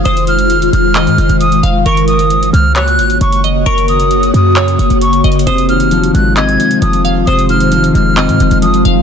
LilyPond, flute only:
\new Staff \with { instrumentName = "Flute" } { \time 4/4 \key f \phrygian \tempo 4 = 133 ees'''8 f'''4 f'''4. ees'''8 r8 | des'''8 ees'''4 f'''8 ges'''4 des'''8 r8 | des'''8 ees'''4 ees'''4. des'''8 r8 | ees'''8 f'''4 ges'''8 aes'''4 ees'''8 r8 |
ees'''8 f'''4 f'''4. ees'''8 r8 | }